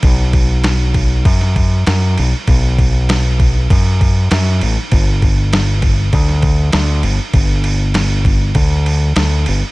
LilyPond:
<<
  \new Staff \with { instrumentName = "Fingered electric bass" } { \clef bass \time 4/4 \key g \major \tempo 4 = 99 b,,2 fis,4 fis,8 b,,16 r16 | b,,2 fis,4 fis,8 a,,16 r16 | g,,2 d,4 d,8 g,,16 r16 | g,,2 d,4 d,8 g,,16 r16 | }
  \new DrumStaff \with { instrumentName = "Drums" } \drummode { \time 4/4 <cymc bd>8 <cymc bd>8 <cymc sn>8 <cymc bd>8 <cymc bd>16 sn16 <cymc bd>8 <cymc sn>8 cymc8 | <cymc bd>8 <cymc bd>8 <cymc sn>8 <cymc bd>8 <cymc bd>8 <cymc bd>8 <cymc sn>8 cymc8 | <cymc bd>8 <cymc bd>8 <cymc sn>8 <cymc bd>8 <cymc bd>16 sn16 <cymc bd>8 <cymc sn>8 cymc8 | <cymc bd>8 cymc8 <cymc sn>8 <cymc bd>8 <cymc bd>8 cymc8 <cymc sn>8 cymc8 | }
>>